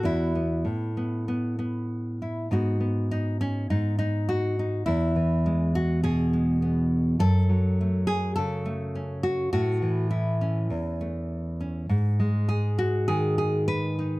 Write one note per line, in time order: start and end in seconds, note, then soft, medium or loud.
0.00 0.64 E2 medium
0.00 0.35 B3 soft
0.00 0.65 F#4 medium
0.05 2.21 E4 medium
0.35 0.96 B3 soft
0.65 2.50 A2 medium
0.97 1.27 B3 soft
1.28 1.57 B3 medium
1.59 2.47 B3 medium
2.22 2.48 E4 soft
2.51 3.69 G#2 medium
2.51 2.80 B3 soft
2.51 3.10 D#4 soft
2.51 4.27 F#4 medium
2.80 4.83 B3 medium
3.11 3.40 D#4 medium
3.41 3.70 C#4 medium
3.70 4.83 G#2 medium
3.70 3.97 D#4 medium
3.99 4.57 D#4 medium
4.29 4.85 F#4 medium
4.59 4.84 D#4 medium
4.86 7.19 E2 medium
4.86 5.74 E4 medium
5.16 7.22 E3 medium
5.46 6.32 G#3 soft
5.75 6.03 F#4 loud
6.04 7.17 B2 medium
6.04 7.20 G#4 loud
6.33 7.17 G#3 soft
6.62 7.20 B3 soft
7.19 9.47 F#2 medium
7.19 8.07 A4 loud
7.49 9.81 F#3 medium
7.81 8.64 A3 soft
8.07 8.35 G#4 loud
8.36 9.49 C#3 medium
8.36 9.22 A4 loud
8.66 9.48 A3 medium
8.95 9.49 C#4 soft
9.23 9.51 F#4 medium
9.53 10.69 A2 medium
9.53 10.10 F#4 loud
9.82 11.86 E3 medium
10.11 11.89 E4 medium
10.41 11.59 C#4 medium
10.70 11.89 E2 medium
11.01 11.86 A3 soft
11.61 11.86 C#4 soft
11.89 14.20 G#2 medium
12.20 14.20 G#3 medium
12.49 13.07 G#4 medium
12.79 13.67 F#4 medium
13.08 14.20 D#3 medium
13.08 13.37 G#4 loud
13.38 13.67 G#4 medium
13.68 14.20 B4 loud
13.99 14.20 D#4 soft